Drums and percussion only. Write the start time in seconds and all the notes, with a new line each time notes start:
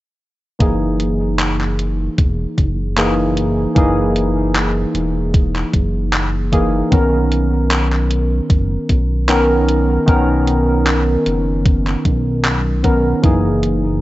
0.60 kick, closed hi-hat
1.00 closed hi-hat
1.39 clap, closed hi-hat
1.61 clap
1.79 closed hi-hat
2.18 kick, closed hi-hat
2.58 kick, closed hi-hat
2.98 clap, closed hi-hat
3.37 closed hi-hat
3.76 kick, closed hi-hat
4.16 closed hi-hat
4.56 clap, closed hi-hat
4.95 closed hi-hat
5.34 kick, closed hi-hat
5.56 clap
5.74 kick, closed hi-hat
6.13 clap, closed hi-hat
6.52 kick, closed hi-hat
6.92 kick, closed hi-hat
7.32 closed hi-hat
7.71 clap, closed hi-hat
7.92 clap
8.11 closed hi-hat
8.50 kick, closed hi-hat
8.89 kick, closed hi-hat
9.29 clap, closed hi-hat
9.69 closed hi-hat
10.08 kick, closed hi-hat
10.47 closed hi-hat
10.87 clap, closed hi-hat
11.26 closed hi-hat
11.66 kick, closed hi-hat
11.87 clap
12.05 kick, closed hi-hat
12.45 clap, closed hi-hat
12.84 kick, closed hi-hat
13.24 kick, closed hi-hat
13.63 closed hi-hat